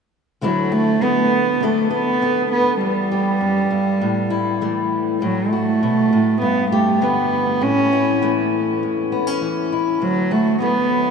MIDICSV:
0, 0, Header, 1, 3, 480
1, 0, Start_track
1, 0, Key_signature, 2, "major"
1, 0, Tempo, 600000
1, 327, Time_signature, 4, 2, 24, 8
1, 8885, End_track
2, 0, Start_track
2, 0, Title_t, "Cello"
2, 0, Program_c, 0, 42
2, 348, Note_on_c, 0, 54, 78
2, 580, Note_on_c, 0, 57, 88
2, 592, Note_off_c, 0, 54, 0
2, 823, Note_on_c, 0, 59, 84
2, 835, Note_off_c, 0, 57, 0
2, 1307, Note_on_c, 0, 57, 75
2, 1319, Note_off_c, 0, 59, 0
2, 1539, Note_off_c, 0, 57, 0
2, 1545, Note_on_c, 0, 59, 75
2, 1986, Note_off_c, 0, 59, 0
2, 2020, Note_on_c, 0, 59, 79
2, 2239, Note_off_c, 0, 59, 0
2, 2254, Note_on_c, 0, 55, 78
2, 3902, Note_off_c, 0, 55, 0
2, 4176, Note_on_c, 0, 54, 78
2, 4394, Note_on_c, 0, 57, 83
2, 4406, Note_off_c, 0, 54, 0
2, 5123, Note_off_c, 0, 57, 0
2, 5131, Note_on_c, 0, 59, 77
2, 5354, Note_off_c, 0, 59, 0
2, 5372, Note_on_c, 0, 57, 71
2, 5618, Note_on_c, 0, 59, 72
2, 5630, Note_off_c, 0, 57, 0
2, 6099, Note_on_c, 0, 61, 88
2, 6111, Note_off_c, 0, 59, 0
2, 6575, Note_off_c, 0, 61, 0
2, 8012, Note_on_c, 0, 54, 79
2, 8251, Note_on_c, 0, 57, 85
2, 8263, Note_off_c, 0, 54, 0
2, 8491, Note_off_c, 0, 57, 0
2, 8495, Note_on_c, 0, 59, 76
2, 8885, Note_off_c, 0, 59, 0
2, 8885, End_track
3, 0, Start_track
3, 0, Title_t, "Steel-string acoustic guitar"
3, 0, Program_c, 1, 25
3, 331, Note_on_c, 1, 38, 56
3, 336, Note_on_c, 1, 50, 54
3, 344, Note_on_c, 1, 57, 53
3, 349, Note_on_c, 1, 64, 54
3, 355, Note_on_c, 1, 66, 57
3, 564, Note_off_c, 1, 66, 0
3, 574, Note_on_c, 1, 66, 49
3, 802, Note_off_c, 1, 50, 0
3, 805, Note_off_c, 1, 57, 0
3, 811, Note_on_c, 1, 50, 51
3, 815, Note_on_c, 1, 57, 51
3, 1263, Note_off_c, 1, 57, 0
3, 1263, Note_off_c, 1, 66, 0
3, 1270, Note_off_c, 1, 64, 0
3, 1273, Note_off_c, 1, 38, 0
3, 1279, Note_off_c, 1, 50, 0
3, 1283, Note_on_c, 1, 38, 55
3, 1289, Note_on_c, 1, 50, 41
3, 1301, Note_on_c, 1, 59, 48
3, 1305, Note_on_c, 1, 62, 49
3, 1310, Note_on_c, 1, 69, 54
3, 1515, Note_off_c, 1, 69, 0
3, 1525, Note_on_c, 1, 69, 51
3, 1764, Note_off_c, 1, 50, 0
3, 1769, Note_off_c, 1, 59, 0
3, 1774, Note_on_c, 1, 50, 50
3, 1778, Note_on_c, 1, 59, 46
3, 2219, Note_off_c, 1, 69, 0
3, 2226, Note_off_c, 1, 59, 0
3, 2230, Note_off_c, 1, 62, 0
3, 2242, Note_off_c, 1, 38, 0
3, 2245, Note_on_c, 1, 40, 60
3, 2252, Note_off_c, 1, 50, 0
3, 2493, Note_on_c, 1, 67, 49
3, 2723, Note_off_c, 1, 40, 0
3, 2726, Note_on_c, 1, 42, 55
3, 2961, Note_off_c, 1, 42, 0
3, 2964, Note_on_c, 1, 43, 52
3, 3184, Note_off_c, 1, 67, 0
3, 3208, Note_off_c, 1, 43, 0
3, 3212, Note_on_c, 1, 45, 57
3, 3443, Note_on_c, 1, 64, 56
3, 3690, Note_on_c, 1, 52, 51
3, 3696, Note_on_c, 1, 57, 52
3, 4142, Note_off_c, 1, 52, 0
3, 4145, Note_off_c, 1, 57, 0
3, 4165, Note_off_c, 1, 45, 0
3, 4167, Note_off_c, 1, 64, 0
3, 4175, Note_on_c, 1, 45, 65
3, 4421, Note_on_c, 1, 66, 45
3, 4654, Note_off_c, 1, 45, 0
3, 4662, Note_on_c, 1, 47, 60
3, 4897, Note_off_c, 1, 47, 0
3, 4901, Note_on_c, 1, 45, 51
3, 5108, Note_off_c, 1, 66, 0
3, 5132, Note_on_c, 1, 43, 55
3, 5136, Note_off_c, 1, 45, 0
3, 5379, Note_on_c, 1, 67, 62
3, 5611, Note_on_c, 1, 50, 51
3, 5615, Note_on_c, 1, 59, 44
3, 6063, Note_off_c, 1, 43, 0
3, 6065, Note_off_c, 1, 59, 0
3, 6066, Note_off_c, 1, 67, 0
3, 6090, Note_on_c, 1, 45, 62
3, 6091, Note_off_c, 1, 50, 0
3, 6343, Note_on_c, 1, 64, 50
3, 6576, Note_on_c, 1, 52, 54
3, 6580, Note_on_c, 1, 57, 51
3, 7051, Note_off_c, 1, 45, 0
3, 7064, Note_on_c, 1, 40, 46
3, 7297, Note_on_c, 1, 59, 46
3, 7415, Note_off_c, 1, 59, 0
3, 7415, Note_on_c, 1, 61, 39
3, 7524, Note_off_c, 1, 52, 0
3, 7534, Note_on_c, 1, 52, 55
3, 7770, Note_off_c, 1, 64, 0
3, 7780, Note_on_c, 1, 64, 46
3, 7983, Note_off_c, 1, 52, 0
3, 7986, Note_off_c, 1, 57, 0
3, 7988, Note_off_c, 1, 40, 0
3, 8013, Note_off_c, 1, 61, 0
3, 8013, Note_on_c, 1, 38, 64
3, 8015, Note_off_c, 1, 64, 0
3, 8249, Note_on_c, 1, 66, 54
3, 8483, Note_on_c, 1, 50, 51
3, 8495, Note_on_c, 1, 57, 50
3, 8885, Note_off_c, 1, 38, 0
3, 8885, Note_off_c, 1, 50, 0
3, 8885, Note_off_c, 1, 57, 0
3, 8885, Note_off_c, 1, 66, 0
3, 8885, End_track
0, 0, End_of_file